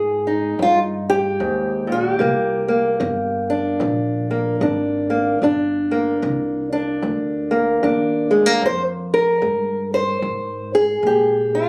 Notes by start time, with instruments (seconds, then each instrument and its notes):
Already playing: upright bass G#2, steel-string acoustic guitar G#3 G#4
0.27 steel-string acoustic guitar D#4
0.59 steel-string acoustic guitar F2 F4, upright bass G2
1.10 steel-string acoustic guitar G4
1.40 upright bass D#2, steel-string acoustic guitar G#2
1.87 steel-string acoustic guitar A#2
1.92 steel-string acoustic guitar F#4
2.12 steel-string acoustic guitar G4
2.19 upright bass C2, steel-string acoustic guitar C3 A#3
2.68 steel-string acoustic guitar A#3
3.00 upright bass G1, steel-string acoustic guitar D#3
3.50 steel-string acoustic guitar D4
3.80 upright bass A#1, steel-string acoustic guitar G2
4.31 steel-string acoustic guitar A#3
4.61 upright bass G#1, steel-string acoustic guitar D#3 D4
5.10 steel-string acoustic guitar A#3
5.42 upright bass G1, steel-string acoustic guitar C3 D4
5.91 steel-string acoustic guitar A#3
6.22 upright bass C2, steel-string acoustic guitar D#3
6.73 steel-string acoustic guitar D4
7.02 upright bass D2, steel-string acoustic guitar G2
7.51 steel-string acoustic guitar A#3
7.83 upright bass D#2, steel-string acoustic guitar D#3 D4
8.31 steel-string acoustic guitar G#3
8.46 steel-string acoustic guitar A#3
8.61 steel-string acoustic guitar F2, upright bass F2
8.66 steel-string acoustic guitar C5
9.14 steel-string acoustic guitar A#4
9.42 upright bass G2, steel-string acoustic guitar G#3
9.94 steel-string acoustic guitar C5
10.22 steel-string acoustic guitar F2, upright bass G#2
10.75 steel-string acoustic guitar G#4
11.03 upright bass A#2, steel-string acoustic guitar G#3
11.07 steel-string acoustic guitar G4
11.55 steel-string acoustic guitar F4